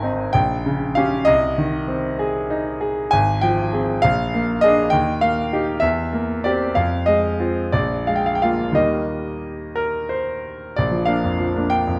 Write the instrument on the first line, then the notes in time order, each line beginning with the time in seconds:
grand piano
Already playing: G#1 D#3 G#5 A#5
0.03 C4 D#4
0.33 A#1 G5
0.66 C#3
0.95 C#4 G4 F5
1.25 C2 D#5
1.58 D#3
1.88 C4
2.19 G#4
2.50 D#4
2.81 G#4
3.11 G#1 G#5
3.41 F3 G5
3.73 C4 G#4
4.02 A#1 F5
4.34 A#3
4.61 D4 G#4 D#5
4.90 D#2 G5
5.21 A#3 F5
5.53 D#4 G4
5.80 E2 E5
6.13 A#3
6.44 C4 G4 D5
6.75 F2 F5
7.06 G#3 D#5
7.40 C4 F4
7.72 A#1 D5
8.07 G#3 F5
8.16 G5
8.26 F5
8.35 G5
8.42 A#3 F4 F5
8.72 D#2 G3 A#3 D#4 D#5
9.76 A#4
10.09 C5
10.76 A#1 D5
10.91 F3
11.05 A#3 D4 F5
11.24 F2
11.40 F3
11.56 A#3 D4
11.70 G5
11.87 F2